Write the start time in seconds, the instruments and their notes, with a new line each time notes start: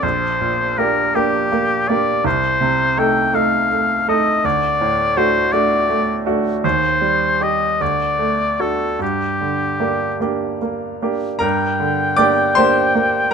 0.03 grand piano A#1, oboe C5
0.41 grand piano A#2
0.78 grand piano A#3 D4 G4, oboe A#4
1.15 grand piano A#3 D4 G4, oboe G4
1.52 grand piano A#3
1.88 grand piano A#3 D4 G4, oboe D5
2.24 grand piano C2, oboe C5
2.61 grand piano C3
2.97 grand piano A3 D#4 A4, oboe G5
3.33 grand piano A3 D#4 A4, oboe F5
3.71 grand piano A3
4.08 grand piano A3 D#4 A4, oboe D#5
4.44 grand piano D2, oboe D5
4.81 grand piano A2
5.17 grand piano A3 D4 F#4, oboe C5
5.52 grand piano A3 D4 F#4, oboe D5
5.89 grand piano A3
6.26 grand piano A3 D4 F#4
6.64 grand piano D#2, oboe C5
7.01 grand piano G3
7.41 grand piano G4, oboe D#5
7.81 grand piano D2, oboe D5
8.19 grand piano A3
8.60 grand piano D4 F#4, oboe A4
8.99 grand piano G2, oboe G4
9.41 grand piano D3
9.80 grand piano A#3 D4 G4
10.20 grand piano A#3 D4 G4
10.62 grand piano A#3
11.02 grand piano A#3 D4 G4
11.39 grand piano G2 A#4 A#5, oboe G5
11.80 grand piano D3
12.17 grand piano A#3 D4 G4 D5 D6
12.55 grand piano A#3 D4 G4 C5 C6
12.95 grand piano A#3